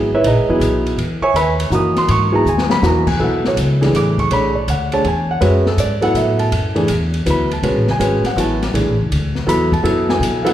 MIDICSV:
0, 0, Header, 1, 5, 480
1, 0, Start_track
1, 0, Tempo, 369231
1, 1280, Time_signature, 3, 2, 24, 8
1, 13694, End_track
2, 0, Start_track
2, 0, Title_t, "Grand piano"
2, 0, Program_c, 0, 0
2, 0, Note_on_c, 0, 59, 55
2, 0, Note_on_c, 0, 64, 56
2, 0, Note_on_c, 0, 68, 72
2, 130, Note_off_c, 0, 59, 0
2, 133, Note_off_c, 0, 64, 0
2, 136, Note_off_c, 0, 68, 0
2, 186, Note_on_c, 0, 64, 76
2, 190, Note_on_c, 0, 76, 93
2, 194, Note_on_c, 0, 73, 82
2, 197, Note_on_c, 0, 71, 87
2, 323, Note_off_c, 0, 71, 0
2, 331, Note_off_c, 0, 64, 0
2, 333, Note_off_c, 0, 76, 0
2, 336, Note_off_c, 0, 73, 0
2, 342, Note_on_c, 0, 71, 68
2, 343, Note_on_c, 0, 68, 66
2, 346, Note_on_c, 0, 63, 69
2, 349, Note_on_c, 0, 75, 88
2, 630, Note_off_c, 0, 68, 0
2, 640, Note_off_c, 0, 71, 0
2, 640, Note_on_c, 0, 64, 68
2, 641, Note_off_c, 0, 63, 0
2, 643, Note_off_c, 0, 75, 0
2, 644, Note_on_c, 0, 54, 72
2, 644, Note_on_c, 0, 59, 70
2, 649, Note_on_c, 0, 68, 80
2, 1249, Note_off_c, 0, 64, 0
2, 1251, Note_off_c, 0, 54, 0
2, 1251, Note_off_c, 0, 59, 0
2, 1254, Note_off_c, 0, 68, 0
2, 1591, Note_on_c, 0, 85, 106
2, 1594, Note_on_c, 0, 76, 90
2, 1602, Note_on_c, 0, 80, 91
2, 1605, Note_on_c, 0, 73, 90
2, 1751, Note_off_c, 0, 76, 0
2, 1752, Note_off_c, 0, 85, 0
2, 1756, Note_off_c, 0, 80, 0
2, 1759, Note_off_c, 0, 73, 0
2, 1767, Note_on_c, 0, 83, 101
2, 1770, Note_on_c, 0, 76, 83
2, 1775, Note_on_c, 0, 80, 82
2, 1776, Note_on_c, 0, 71, 77
2, 1955, Note_off_c, 0, 83, 0
2, 1957, Note_off_c, 0, 76, 0
2, 1961, Note_off_c, 0, 71, 0
2, 1961, Note_off_c, 0, 80, 0
2, 2230, Note_on_c, 0, 52, 63
2, 2233, Note_on_c, 0, 58, 64
2, 2234, Note_on_c, 0, 63, 65
2, 2239, Note_on_c, 0, 66, 72
2, 2270, Note_on_c, 0, 87, 85
2, 2562, Note_off_c, 0, 87, 0
2, 2574, Note_on_c, 0, 84, 82
2, 2723, Note_off_c, 0, 84, 0
2, 2744, Note_on_c, 0, 85, 107
2, 2968, Note_off_c, 0, 52, 0
2, 2969, Note_off_c, 0, 58, 0
2, 2969, Note_off_c, 0, 63, 0
2, 2972, Note_off_c, 0, 66, 0
2, 3012, Note_on_c, 0, 54, 68
2, 3019, Note_on_c, 0, 64, 63
2, 3021, Note_on_c, 0, 59, 66
2, 3021, Note_on_c, 0, 68, 79
2, 3039, Note_off_c, 0, 85, 0
2, 3061, Note_on_c, 0, 82, 93
2, 3170, Note_off_c, 0, 54, 0
2, 3174, Note_off_c, 0, 64, 0
2, 3175, Note_off_c, 0, 59, 0
2, 3175, Note_off_c, 0, 68, 0
2, 3207, Note_off_c, 0, 82, 0
2, 3232, Note_on_c, 0, 80, 89
2, 3523, Note_off_c, 0, 80, 0
2, 3528, Note_on_c, 0, 83, 97
2, 3668, Note_on_c, 0, 58, 63
2, 3669, Note_on_c, 0, 63, 57
2, 3671, Note_on_c, 0, 52, 63
2, 3677, Note_on_c, 0, 66, 77
2, 3680, Note_off_c, 0, 83, 0
2, 3724, Note_on_c, 0, 82, 76
2, 3958, Note_off_c, 0, 58, 0
2, 3958, Note_off_c, 0, 63, 0
2, 3959, Note_off_c, 0, 52, 0
2, 3963, Note_off_c, 0, 66, 0
2, 3989, Note_on_c, 0, 80, 81
2, 4009, Note_off_c, 0, 82, 0
2, 4150, Note_off_c, 0, 80, 0
2, 4151, Note_on_c, 0, 54, 66
2, 4153, Note_on_c, 0, 64, 60
2, 4157, Note_on_c, 0, 59, 60
2, 4161, Note_on_c, 0, 69, 73
2, 4208, Note_on_c, 0, 78, 67
2, 4491, Note_off_c, 0, 78, 0
2, 4522, Note_on_c, 0, 73, 81
2, 4605, Note_off_c, 0, 73, 0
2, 4887, Note_off_c, 0, 54, 0
2, 4888, Note_off_c, 0, 64, 0
2, 4890, Note_off_c, 0, 59, 0
2, 4892, Note_off_c, 0, 69, 0
2, 4954, Note_on_c, 0, 57, 56
2, 4956, Note_on_c, 0, 52, 66
2, 4956, Note_on_c, 0, 62, 59
2, 4958, Note_on_c, 0, 68, 70
2, 5150, Note_on_c, 0, 86, 85
2, 5441, Note_off_c, 0, 86, 0
2, 5455, Note_on_c, 0, 85, 96
2, 5564, Note_off_c, 0, 57, 0
2, 5565, Note_off_c, 0, 52, 0
2, 5565, Note_off_c, 0, 62, 0
2, 5566, Note_off_c, 0, 68, 0
2, 5603, Note_off_c, 0, 85, 0
2, 5603, Note_on_c, 0, 57, 65
2, 5609, Note_on_c, 0, 68, 57
2, 5611, Note_on_c, 0, 73, 64
2, 5616, Note_on_c, 0, 62, 53
2, 5632, Note_on_c, 0, 83, 93
2, 5885, Note_off_c, 0, 57, 0
2, 5888, Note_off_c, 0, 68, 0
2, 5889, Note_off_c, 0, 73, 0
2, 5891, Note_off_c, 0, 62, 0
2, 5918, Note_on_c, 0, 74, 67
2, 5922, Note_off_c, 0, 83, 0
2, 6074, Note_off_c, 0, 74, 0
2, 6109, Note_on_c, 0, 78, 82
2, 6401, Note_off_c, 0, 78, 0
2, 6411, Note_on_c, 0, 68, 61
2, 6413, Note_on_c, 0, 57, 64
2, 6413, Note_on_c, 0, 62, 65
2, 6416, Note_on_c, 0, 73, 73
2, 6416, Note_on_c, 0, 81, 107
2, 6549, Note_off_c, 0, 68, 0
2, 6550, Note_off_c, 0, 57, 0
2, 6550, Note_off_c, 0, 62, 0
2, 6551, Note_off_c, 0, 73, 0
2, 6563, Note_off_c, 0, 81, 0
2, 6590, Note_on_c, 0, 80, 82
2, 6881, Note_off_c, 0, 80, 0
2, 6902, Note_on_c, 0, 78, 89
2, 7029, Note_on_c, 0, 71, 86
2, 7030, Note_on_c, 0, 61, 77
2, 7031, Note_on_c, 0, 56, 78
2, 7038, Note_on_c, 0, 66, 72
2, 7046, Note_off_c, 0, 78, 0
2, 7081, Note_on_c, 0, 76, 77
2, 7318, Note_off_c, 0, 61, 0
2, 7318, Note_off_c, 0, 71, 0
2, 7319, Note_off_c, 0, 56, 0
2, 7322, Note_off_c, 0, 66, 0
2, 7367, Note_off_c, 0, 76, 0
2, 7371, Note_on_c, 0, 69, 76
2, 7521, Note_off_c, 0, 69, 0
2, 7538, Note_on_c, 0, 74, 89
2, 7816, Note_on_c, 0, 54, 69
2, 7820, Note_on_c, 0, 59, 66
2, 7826, Note_on_c, 0, 64, 65
2, 7830, Note_on_c, 0, 69, 80
2, 7835, Note_off_c, 0, 74, 0
2, 7840, Note_on_c, 0, 78, 105
2, 7995, Note_off_c, 0, 78, 0
2, 8021, Note_on_c, 0, 76, 74
2, 8312, Note_on_c, 0, 81, 91
2, 8316, Note_off_c, 0, 76, 0
2, 8410, Note_off_c, 0, 81, 0
2, 8435, Note_off_c, 0, 54, 0
2, 8437, Note_off_c, 0, 59, 0
2, 8440, Note_off_c, 0, 64, 0
2, 8442, Note_off_c, 0, 69, 0
2, 8775, Note_on_c, 0, 57, 60
2, 8776, Note_on_c, 0, 52, 74
2, 8776, Note_on_c, 0, 62, 63
2, 8784, Note_on_c, 0, 68, 78
2, 8931, Note_off_c, 0, 52, 0
2, 8931, Note_off_c, 0, 57, 0
2, 8931, Note_off_c, 0, 62, 0
2, 8935, Note_off_c, 0, 68, 0
2, 9437, Note_on_c, 0, 54, 64
2, 9440, Note_on_c, 0, 59, 56
2, 9442, Note_on_c, 0, 71, 64
2, 9444, Note_on_c, 0, 64, 56
2, 9495, Note_on_c, 0, 83, 79
2, 9722, Note_off_c, 0, 54, 0
2, 9723, Note_off_c, 0, 59, 0
2, 9724, Note_off_c, 0, 71, 0
2, 9725, Note_off_c, 0, 64, 0
2, 9774, Note_off_c, 0, 83, 0
2, 9788, Note_on_c, 0, 81, 76
2, 9917, Note_on_c, 0, 56, 66
2, 9926, Note_on_c, 0, 61, 58
2, 9926, Note_on_c, 0, 66, 55
2, 9930, Note_on_c, 0, 71, 71
2, 10202, Note_off_c, 0, 56, 0
2, 10207, Note_off_c, 0, 61, 0
2, 10207, Note_off_c, 0, 66, 0
2, 10209, Note_off_c, 0, 71, 0
2, 10218, Note_off_c, 0, 81, 0
2, 10279, Note_on_c, 0, 80, 91
2, 10391, Note_on_c, 0, 56, 69
2, 10391, Note_on_c, 0, 61, 60
2, 10399, Note_on_c, 0, 66, 61
2, 10404, Note_on_c, 0, 71, 74
2, 10679, Note_off_c, 0, 56, 0
2, 10679, Note_off_c, 0, 61, 0
2, 10683, Note_off_c, 0, 66, 0
2, 10686, Note_off_c, 0, 71, 0
2, 10704, Note_off_c, 0, 80, 0
2, 10744, Note_on_c, 0, 78, 80
2, 10874, Note_on_c, 0, 59, 59
2, 10876, Note_on_c, 0, 64, 61
2, 10878, Note_on_c, 0, 54, 59
2, 10879, Note_on_c, 0, 66, 73
2, 10887, Note_off_c, 0, 78, 0
2, 10916, Note_on_c, 0, 81, 79
2, 11161, Note_off_c, 0, 59, 0
2, 11162, Note_off_c, 0, 64, 0
2, 11163, Note_off_c, 0, 54, 0
2, 11163, Note_off_c, 0, 66, 0
2, 11345, Note_off_c, 0, 81, 0
2, 11358, Note_on_c, 0, 62, 53
2, 11359, Note_on_c, 0, 52, 57
2, 11359, Note_on_c, 0, 57, 54
2, 11362, Note_on_c, 0, 68, 64
2, 11643, Note_off_c, 0, 57, 0
2, 11643, Note_off_c, 0, 62, 0
2, 11644, Note_off_c, 0, 52, 0
2, 11645, Note_off_c, 0, 68, 0
2, 12306, Note_on_c, 0, 59, 68
2, 12308, Note_on_c, 0, 54, 72
2, 12309, Note_on_c, 0, 64, 60
2, 12313, Note_on_c, 0, 69, 77
2, 12331, Note_on_c, 0, 83, 105
2, 12598, Note_off_c, 0, 54, 0
2, 12598, Note_off_c, 0, 59, 0
2, 12599, Note_off_c, 0, 64, 0
2, 12601, Note_off_c, 0, 69, 0
2, 12633, Note_off_c, 0, 83, 0
2, 12650, Note_on_c, 0, 81, 89
2, 12782, Note_on_c, 0, 59, 67
2, 12784, Note_on_c, 0, 54, 70
2, 12789, Note_on_c, 0, 64, 72
2, 12790, Note_on_c, 0, 69, 86
2, 13090, Note_off_c, 0, 81, 0
2, 13129, Note_on_c, 0, 80, 92
2, 13525, Note_off_c, 0, 59, 0
2, 13526, Note_off_c, 0, 54, 0
2, 13528, Note_off_c, 0, 64, 0
2, 13529, Note_off_c, 0, 69, 0
2, 13558, Note_on_c, 0, 77, 63
2, 13570, Note_off_c, 0, 80, 0
2, 13579, Note_on_c, 0, 54, 83
2, 13581, Note_off_c, 0, 77, 0
2, 13581, Note_on_c, 0, 69, 89
2, 13584, Note_on_c, 0, 64, 74
2, 13585, Note_on_c, 0, 59, 70
2, 13610, Note_on_c, 0, 78, 85
2, 13694, Note_off_c, 0, 54, 0
2, 13694, Note_off_c, 0, 59, 0
2, 13694, Note_off_c, 0, 64, 0
2, 13694, Note_off_c, 0, 69, 0
2, 13694, Note_off_c, 0, 78, 0
2, 13694, End_track
3, 0, Start_track
3, 0, Title_t, "Upright bass"
3, 0, Program_c, 1, 32
3, 0, Note_on_c, 1, 32, 77
3, 301, Note_off_c, 1, 32, 0
3, 314, Note_on_c, 1, 34, 84
3, 469, Note_off_c, 1, 34, 0
3, 469, Note_on_c, 1, 32, 58
3, 635, Note_off_c, 1, 32, 0
3, 643, Note_on_c, 1, 28, 70
3, 769, Note_off_c, 1, 28, 0
3, 776, Note_on_c, 1, 35, 91
3, 1250, Note_off_c, 1, 35, 0
3, 1258, Note_on_c, 1, 40, 80
3, 1563, Note_off_c, 1, 40, 0
3, 1741, Note_on_c, 1, 39, 89
3, 2208, Note_off_c, 1, 39, 0
3, 2216, Note_on_c, 1, 42, 92
3, 2521, Note_off_c, 1, 42, 0
3, 2710, Note_on_c, 1, 44, 86
3, 3180, Note_off_c, 1, 44, 0
3, 3187, Note_on_c, 1, 39, 85
3, 3657, Note_off_c, 1, 39, 0
3, 3667, Note_on_c, 1, 40, 88
3, 4137, Note_off_c, 1, 40, 0
3, 4161, Note_on_c, 1, 35, 80
3, 4624, Note_off_c, 1, 35, 0
3, 4636, Note_on_c, 1, 37, 80
3, 5102, Note_off_c, 1, 37, 0
3, 5116, Note_on_c, 1, 33, 81
3, 5582, Note_off_c, 1, 33, 0
3, 5599, Note_on_c, 1, 35, 83
3, 6063, Note_off_c, 1, 35, 0
3, 6081, Note_on_c, 1, 38, 88
3, 6544, Note_off_c, 1, 38, 0
3, 6560, Note_on_c, 1, 40, 85
3, 7024, Note_off_c, 1, 40, 0
3, 7036, Note_on_c, 1, 42, 79
3, 7498, Note_off_c, 1, 42, 0
3, 7506, Note_on_c, 1, 44, 81
3, 7976, Note_off_c, 1, 44, 0
3, 7988, Note_on_c, 1, 45, 93
3, 8458, Note_off_c, 1, 45, 0
3, 8475, Note_on_c, 1, 42, 89
3, 8941, Note_off_c, 1, 42, 0
3, 8965, Note_on_c, 1, 40, 92
3, 9426, Note_off_c, 1, 40, 0
3, 9442, Note_on_c, 1, 38, 83
3, 9905, Note_off_c, 1, 38, 0
3, 9914, Note_on_c, 1, 35, 84
3, 10076, Note_off_c, 1, 35, 0
3, 10076, Note_on_c, 1, 33, 61
3, 10223, Note_off_c, 1, 33, 0
3, 10231, Note_on_c, 1, 30, 67
3, 10383, Note_off_c, 1, 30, 0
3, 10392, Note_on_c, 1, 32, 84
3, 10689, Note_off_c, 1, 32, 0
3, 10868, Note_on_c, 1, 33, 91
3, 11338, Note_off_c, 1, 33, 0
3, 11360, Note_on_c, 1, 35, 87
3, 11528, Note_off_c, 1, 35, 0
3, 11528, Note_on_c, 1, 33, 58
3, 11683, Note_off_c, 1, 33, 0
3, 11689, Note_on_c, 1, 30, 67
3, 11832, Note_off_c, 1, 30, 0
3, 11851, Note_on_c, 1, 38, 94
3, 12298, Note_off_c, 1, 38, 0
3, 12306, Note_on_c, 1, 40, 86
3, 12778, Note_off_c, 1, 40, 0
3, 12787, Note_on_c, 1, 42, 84
3, 13253, Note_off_c, 1, 42, 0
3, 13261, Note_on_c, 1, 47, 92
3, 13694, Note_off_c, 1, 47, 0
3, 13694, End_track
4, 0, Start_track
4, 0, Title_t, "Muted upright bass strokes"
4, 1582, Note_on_c, 9, 29, 43
4, 1712, Note_off_c, 9, 29, 0
4, 2561, Note_on_c, 9, 29, 40
4, 2691, Note_off_c, 9, 29, 0
4, 10707, Note_on_c, 9, 29, 41
4, 10837, Note_off_c, 9, 29, 0
4, 13694, End_track
5, 0, Start_track
5, 0, Title_t, "Drums"
5, 314, Note_on_c, 9, 51, 69
5, 444, Note_off_c, 9, 51, 0
5, 796, Note_on_c, 9, 44, 66
5, 796, Note_on_c, 9, 51, 65
5, 926, Note_off_c, 9, 44, 0
5, 926, Note_off_c, 9, 51, 0
5, 1123, Note_on_c, 9, 51, 46
5, 1253, Note_off_c, 9, 51, 0
5, 1280, Note_on_c, 9, 51, 62
5, 1410, Note_off_c, 9, 51, 0
5, 1764, Note_on_c, 9, 44, 53
5, 1764, Note_on_c, 9, 51, 68
5, 1894, Note_off_c, 9, 44, 0
5, 1894, Note_off_c, 9, 51, 0
5, 2075, Note_on_c, 9, 51, 69
5, 2205, Note_off_c, 9, 51, 0
5, 2229, Note_on_c, 9, 44, 58
5, 2359, Note_off_c, 9, 44, 0
5, 2551, Note_on_c, 9, 38, 39
5, 2554, Note_on_c, 9, 51, 46
5, 2681, Note_off_c, 9, 38, 0
5, 2684, Note_off_c, 9, 51, 0
5, 2709, Note_on_c, 9, 51, 69
5, 2839, Note_off_c, 9, 51, 0
5, 3202, Note_on_c, 9, 44, 56
5, 3332, Note_off_c, 9, 44, 0
5, 3356, Note_on_c, 9, 38, 62
5, 3486, Note_off_c, 9, 38, 0
5, 3508, Note_on_c, 9, 38, 84
5, 3638, Note_off_c, 9, 38, 0
5, 3676, Note_on_c, 9, 38, 55
5, 3678, Note_on_c, 9, 44, 56
5, 3806, Note_off_c, 9, 38, 0
5, 3808, Note_off_c, 9, 44, 0
5, 3990, Note_on_c, 9, 49, 79
5, 3993, Note_on_c, 9, 36, 71
5, 4120, Note_off_c, 9, 49, 0
5, 4123, Note_off_c, 9, 36, 0
5, 4480, Note_on_c, 9, 38, 51
5, 4610, Note_off_c, 9, 38, 0
5, 4642, Note_on_c, 9, 44, 66
5, 4642, Note_on_c, 9, 51, 64
5, 4772, Note_off_c, 9, 44, 0
5, 4772, Note_off_c, 9, 51, 0
5, 4971, Note_on_c, 9, 38, 43
5, 4974, Note_on_c, 9, 51, 46
5, 5101, Note_off_c, 9, 38, 0
5, 5104, Note_off_c, 9, 51, 0
5, 5127, Note_on_c, 9, 38, 34
5, 5130, Note_on_c, 9, 44, 49
5, 5130, Note_on_c, 9, 51, 66
5, 5257, Note_off_c, 9, 38, 0
5, 5260, Note_off_c, 9, 44, 0
5, 5260, Note_off_c, 9, 51, 0
5, 5438, Note_on_c, 9, 36, 56
5, 5445, Note_on_c, 9, 51, 44
5, 5568, Note_off_c, 9, 36, 0
5, 5575, Note_off_c, 9, 51, 0
5, 5599, Note_on_c, 9, 51, 66
5, 5729, Note_off_c, 9, 51, 0
5, 6082, Note_on_c, 9, 44, 58
5, 6082, Note_on_c, 9, 51, 68
5, 6212, Note_off_c, 9, 44, 0
5, 6212, Note_off_c, 9, 51, 0
5, 6394, Note_on_c, 9, 51, 48
5, 6524, Note_off_c, 9, 51, 0
5, 6558, Note_on_c, 9, 51, 52
5, 6688, Note_off_c, 9, 51, 0
5, 7039, Note_on_c, 9, 51, 68
5, 7169, Note_off_c, 9, 51, 0
5, 7359, Note_on_c, 9, 38, 45
5, 7489, Note_off_c, 9, 38, 0
5, 7514, Note_on_c, 9, 44, 65
5, 7514, Note_on_c, 9, 51, 66
5, 7644, Note_off_c, 9, 44, 0
5, 7644, Note_off_c, 9, 51, 0
5, 7828, Note_on_c, 9, 51, 49
5, 7958, Note_off_c, 9, 51, 0
5, 7996, Note_on_c, 9, 44, 50
5, 7996, Note_on_c, 9, 51, 62
5, 8126, Note_off_c, 9, 44, 0
5, 8126, Note_off_c, 9, 51, 0
5, 8309, Note_on_c, 9, 51, 51
5, 8439, Note_off_c, 9, 51, 0
5, 8476, Note_on_c, 9, 51, 67
5, 8606, Note_off_c, 9, 51, 0
5, 8788, Note_on_c, 9, 51, 45
5, 8918, Note_off_c, 9, 51, 0
5, 8945, Note_on_c, 9, 44, 57
5, 8945, Note_on_c, 9, 51, 69
5, 9075, Note_off_c, 9, 44, 0
5, 9075, Note_off_c, 9, 51, 0
5, 9278, Note_on_c, 9, 51, 51
5, 9408, Note_off_c, 9, 51, 0
5, 9441, Note_on_c, 9, 44, 62
5, 9441, Note_on_c, 9, 51, 68
5, 9571, Note_off_c, 9, 44, 0
5, 9571, Note_off_c, 9, 51, 0
5, 9767, Note_on_c, 9, 51, 49
5, 9897, Note_off_c, 9, 51, 0
5, 9923, Note_on_c, 9, 51, 64
5, 10053, Note_off_c, 9, 51, 0
5, 10238, Note_on_c, 9, 38, 44
5, 10368, Note_off_c, 9, 38, 0
5, 10407, Note_on_c, 9, 44, 73
5, 10407, Note_on_c, 9, 51, 72
5, 10537, Note_off_c, 9, 44, 0
5, 10537, Note_off_c, 9, 51, 0
5, 10716, Note_on_c, 9, 38, 39
5, 10719, Note_on_c, 9, 51, 49
5, 10846, Note_off_c, 9, 38, 0
5, 10849, Note_off_c, 9, 51, 0
5, 10893, Note_on_c, 9, 44, 67
5, 10893, Note_on_c, 9, 51, 66
5, 11023, Note_off_c, 9, 44, 0
5, 11023, Note_off_c, 9, 51, 0
5, 11210, Note_on_c, 9, 38, 47
5, 11212, Note_on_c, 9, 51, 48
5, 11340, Note_off_c, 9, 38, 0
5, 11342, Note_off_c, 9, 51, 0
5, 11375, Note_on_c, 9, 51, 70
5, 11505, Note_off_c, 9, 51, 0
5, 11854, Note_on_c, 9, 51, 65
5, 11984, Note_off_c, 9, 51, 0
5, 12160, Note_on_c, 9, 38, 37
5, 12290, Note_off_c, 9, 38, 0
5, 12335, Note_on_c, 9, 44, 68
5, 12335, Note_on_c, 9, 51, 74
5, 12465, Note_off_c, 9, 44, 0
5, 12465, Note_off_c, 9, 51, 0
5, 12639, Note_on_c, 9, 36, 67
5, 12654, Note_on_c, 9, 51, 46
5, 12769, Note_off_c, 9, 36, 0
5, 12784, Note_off_c, 9, 51, 0
5, 12808, Note_on_c, 9, 51, 67
5, 12938, Note_off_c, 9, 51, 0
5, 13121, Note_on_c, 9, 38, 61
5, 13251, Note_off_c, 9, 38, 0
5, 13295, Note_on_c, 9, 44, 67
5, 13295, Note_on_c, 9, 51, 74
5, 13425, Note_off_c, 9, 44, 0
5, 13425, Note_off_c, 9, 51, 0
5, 13602, Note_on_c, 9, 51, 77
5, 13694, Note_off_c, 9, 51, 0
5, 13694, End_track
0, 0, End_of_file